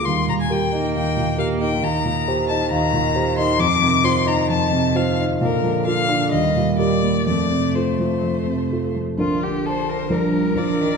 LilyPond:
<<
  \new Staff \with { instrumentName = "Violin" } { \time 4/4 \key ees \major \tempo 4 = 131 c'''8 bes''16 aes''16 g''4 g''4 f''8 g''8 | \key bes \major bes''4. a''8 bes''4. c'''8 | d'''4 c'''8 bes''8 a''4 f''8 r8 | bes'4 f''4 ees''4 d''4 |
d''4 c''2~ c''8 r8 | r4 c''4 bes'4 d''4 | }
  \new Staff \with { instrumentName = "Violin" } { \time 4/4 \key ees \major r1 | \key bes \major r1 | r1 | r1 |
r1 | f'8 g'8 a'8 bes'8 bes'2 | }
  \new Staff \with { instrumentName = "Grand piano" } { \time 4/4 \key ees \major ees,8 bes,8 <g' bes'>8 ees'8 ees,8 bes,8 <g' bes'>8 ees'8 | \key bes \major ees,8 bes,8 <g' c''>8 ees'8 ees,8 bes,8 <g' c''>8 ees'8 | f,8 c8 <f' c''>8 ees'8 f,8 c8 <f' c''>8 ees'8 | bes,8 f8 <f' bes'>8 d'8 ees,8 bes,8 <g' bes'>8 bes8 |
f,8 c8 <f' a'>8 f8 f,8 c8 <f' a'>8 f8 | <bes,, f d' bes'>2 <bes,, f d' bes'>4 <bes,, f d' bes'>4 | }
  \new Staff \with { instrumentName = "Cello" } { \clef bass \time 4/4 \key ees \major g4 g8 bes4. bes4 | \key bes \major ees1~ | ees1 | d2 g2 |
a2.~ a8 r8 | d2 g4 f8 ees8 | }
>>